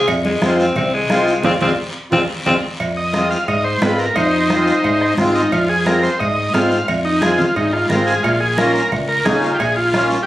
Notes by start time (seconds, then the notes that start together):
0.08 F2, bombo low, cowbell, long guiro
0.25 G#3, high conga
0.41 F2 G#3 C4 F4, bombo rim, high conga, short guiro
0.59 C4, short guiro
0.76 C2 C4, bombo low, cowbell, low conga, long guiro
0.94 G#3
1.09 C2 G#3 C4 F4, bombo rim, high conga, short guiro
1.28 short guiro
1.43 F2 G#3 C4 F4, bombo low, low conga, high timbale, long guiro
1.61 F2 G#3 C4 F4, bombo low, low conga, high timbale, long guiro
2.11 F2 G#3 C4 F4, bombo low, low conga, high timbale, long guiro
2.45 F2 G#3 C4 F4, bombo low, low conga, high timbale, long guiro
2.80 F2, bombo low, cowbell, high conga, long guiro
2.97 D#5
3.13 G#3 C4 F4, bombo rim, high conga, short guiro
3.31 F5, short guiro
3.48 G#2 D#5, bombo low, cowbell, high conga, long guiro
3.64 C5
3.81 G#2 G#3 C4 F4 B4, bombo rim, high conga, low timbale, short guiro
3.99 A#4, short guiro
4.15 F2 D#4 C5, bombo low, cowbell, high conga, long guiro
4.49 G#3 C4 F4, bombo rim, high conga, short guiro
4.67 short guiro
4.84 G#2, bombo low, cowbell, high conga, long guiro
5.01 bombo rim
5.18 G#2 G#3 C4 F4, bombo low, bombo rim, high conga, low conga, short guiro
5.35 D#4, short guiro
5.52 F2 F4, bombo low, cowbell, high conga, long guiro
5.69 G#4
5.86 G#3 C4 F4 A#4, bombo rim, high conga, short guiro
6.03 C5, short guiro
6.20 G#2 D#5, bombo low, cowbell, high conga, long guiro
6.54 G#2 G#3 C4 F4 F5, bombo rim, high conga, low timbale, short guiro
6.71 short guiro
6.88 F2, bombo low, cowbell, high conga, long guiro
7.05 D#4
7.22 G#3 C4 F4 G#4, bombo rim, high conga, short guiro
7.38 F4, low conga, short guiro
7.56 G#2 D#4, bombo low, cowbell, high conga, long guiro
7.73 F4, bombo rim
7.89 G#2 G#3 C4 F4 A#4, bombo rim, high conga, low conga, short guiro
8.06 G#4, short guiro
8.23 A#1 F4, bombo low, cowbell, high conga, long guiro
8.41 G#4
8.57 A#3 C#4 F4 A#4, bombo rim, high conga, short guiro
8.75 short guiro
8.92 C#2, bombo low, cowbell, high conga, long guiro
9.08 A#4
9.25 C#2 A#3 C#4 D#4 G#4, bombo low, bombo rim, high conga, low timbale, short guiro
9.42 F4, short guiro
9.55 G4
9.59 A#1 G#4, bombo low, cowbell, high conga, long guiro
9.77 F4
9.93 A#3 C#4 F4, bombo rim, high conga, short guiro
10.11 short guiro
10.23 G4